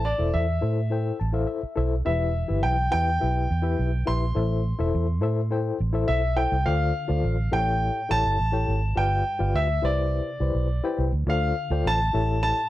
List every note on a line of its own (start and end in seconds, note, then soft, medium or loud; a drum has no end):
0.00 0.12 A1 loud
0.00 0.58 A2 medium
0.05 0.35 D5 medium
0.18 0.31 E1 medium
0.18 0.45 E4 medium
0.18 0.46 A4 medium
0.18 0.46 C5 medium
0.18 0.46 E5 medium
0.34 0.58 E2 loud
0.34 1.16 E5 medium
0.61 1.11 A2 medium
0.61 0.79 E4 medium
0.61 0.80 A4 medium
0.61 0.80 C5 medium
0.61 0.80 E5 medium
0.90 1.17 E4 medium
0.90 1.18 A4 medium
0.90 1.18 C5 medium
0.90 1.18 G5 medium
1.20 1.45 A1 medium
1.20 1.33 A5 medium
1.33 1.60 E4 medium
1.33 1.60 A4 medium
1.33 1.60 C5 medium
1.33 1.46 E5 loud
1.33 1.47 F5 medium
1.47 1.76 E5 medium
1.63 muted fingered electric bass stroke soft
1.76 2.01 B1 medium
1.76 1.94 E4 medium
1.76 1.94 A4 medium
1.76 1.95 C5 medium
1.76 1.95 E5 medium
2.05 2.42 E1 loud
2.05 2.88 E3 medium
2.05 2.32 E4 medium
2.05 2.33 G4 medium
2.05 2.32 B4 medium
2.05 2.65 E5 medium
2.05 2.33 E5 medium
2.48 2.62 G1 medium
2.48 2.75 E4 medium
2.48 2.75 G4 medium
2.48 2.76 B4 medium
2.48 2.76 E5 medium
2.63 2.88 B1 loud
2.63 2.90 G5 medium
2.91 3.17 E2 loud
2.91 3.09 E4 medium
2.91 3.10 G4 medium
2.91 3.10 B4 medium
2.91 3.10 E5 medium
2.91 4.10 G5 loud
3.20 3.46 B1 loud
3.20 3.47 E4 medium
3.20 3.47 G4 medium
3.20 3.48 B4 medium
3.20 3.48 E5 medium
3.51 3.74 E2 loud
3.62 3.90 E4 medium
3.62 3.90 G4 medium
3.62 3.90 B4 medium
3.62 3.90 E5 loud
3.79 4.03 B1 loud
4.06 4.32 A#1 medium
4.06 4.24 E4 medium
4.06 4.25 G4 medium
4.06 4.25 B4 medium
4.06 4.25 E5 medium
4.06 6.05 C6 loud
4.35 4.73 A1 loud
4.35 5.18 A2 medium
4.35 4.62 E4 medium
4.35 4.62 A4 medium
4.35 4.62 C5 medium
4.35 4.63 E5 medium
4.79 4.91 E1 medium
4.79 5.05 E4 loud
4.79 5.06 A4 medium
4.79 5.06 C5 medium
4.79 5.06 E5 loud
4.95 5.23 E2 loud
5.21 5.71 A2 loud
5.21 5.40 E4 medium
5.21 5.40 A4 medium
5.21 5.40 C5 medium
5.21 5.40 E5 loud
5.50 5.77 E4 medium
5.50 5.78 A4 medium
5.50 5.78 C5 medium
5.50 5.78 G5 medium
5.80 6.04 A1 medium
5.93 6.20 E4 medium
5.93 6.21 A4 medium
5.93 6.21 C5 medium
5.93 6.21 E5 loud
6.08 6.45 B1 loud
6.08 6.38 E5 medium
6.37 6.55 E4 medium
6.37 6.55 A4 medium
6.37 6.55 C5 medium
6.37 6.55 E5 loud
6.37 6.67 G5 medium
6.52 6.64 C2 medium
6.66 6.91 D2 loud
6.66 7.49 D3 medium
6.66 6.93 F4 medium
6.66 6.93 A4 medium
6.66 6.93 C5 medium
6.66 6.93 D5 medium
6.66 7.55 F5 medium
6.66 6.93 F5 medium
7.08 7.22 D2 medium
7.08 7.35 F4 medium
7.08 7.36 A4 medium
7.08 7.36 C5 medium
7.08 7.36 D5 medium
7.08 7.36 F5 medium
7.24 7.48 A1 loud
7.52 7.89 A1 loud
7.52 8.35 A2 medium
7.52 7.98 E4 medium
7.52 7.98 G4 medium
7.52 7.98 A4 medium
7.52 7.59 C5 medium
7.52 7.99 E5 medium
7.52 8.12 G5 loud
7.59 8.02 C#5 medium
8.09 8.23 A1 medium
8.09 8.36 E4 medium
8.09 8.37 G4 medium
8.09 8.36 A4 medium
8.09 8.37 C#5 medium
8.09 8.37 E5 medium
8.09 9.00 A5 loud
8.25 8.37 G1 medium
8.40 8.64 A1 medium
8.52 8.80 E4 medium
8.52 8.80 G4 medium
8.52 8.80 A4 medium
8.52 8.80 C#5 medium
8.52 8.80 G5 medium
8.68 8.92 G#1 loud
8.96 9.21 G1 loud
8.96 9.79 G2 medium
8.96 9.23 F4 medium
8.96 9.23 G4 medium
8.96 9.23 B4 medium
8.96 9.23 D5 medium
8.96 9.24 F5 medium
8.96 9.57 G5 medium
9.39 9.52 G1 loud
9.39 9.66 F4 medium
9.39 9.66 G4 medium
9.39 9.67 B4 medium
9.39 9.67 D5 medium
9.39 9.67 F5 medium
9.54 9.79 D2 medium
9.54 9.85 E5 medium
9.82 10.20 C2 medium
9.82 10.66 C3 medium
9.82 10.29 E4 medium
9.82 10.29 G4 medium
9.82 10.29 B4 medium
9.82 10.29 C5 medium
9.82 10.96 D5 medium
9.82 10.30 E5 medium
10.40 10.53 C2 medium
10.40 10.67 E4 medium
10.40 10.67 G4 medium
10.40 10.68 B4 medium
10.40 10.68 C5 medium
10.40 10.68 D5 medium
10.55 10.79 B1 medium
10.84 11.11 E4 medium
10.84 11.11 G4 medium
10.84 11.11 B4 medium
10.84 11.11 C5 medium
10.84 11.11 G5 loud
10.98 11.11 C2 medium
11.13 11.25 D2 medium
11.27 11.51 D2 loud
11.27 12.11 D3 medium
11.27 11.54 F4 medium
11.27 11.55 A4 medium
11.27 11.55 C5 medium
11.27 11.55 D5 medium
11.27 11.55 F5 medium
11.27 11.88 F5 medium
11.70 11.83 D2 medium
11.70 11.98 F4 medium
11.70 11.98 A4 medium
11.70 11.98 C5 medium
11.70 11.98 D5 medium
11.70 11.98 G5 medium
11.85 12.09 A1 loud
11.85 12.41 A5 loud
12.13 12.51 A1 loud
12.13 12.69 A2 medium
12.13 12.60 E4 medium
12.13 12.60 G4 medium
12.13 12.61 A4 medium
12.13 12.61 C#5 medium
12.13 12.61 E5 medium
12.43 12.69 A5 loud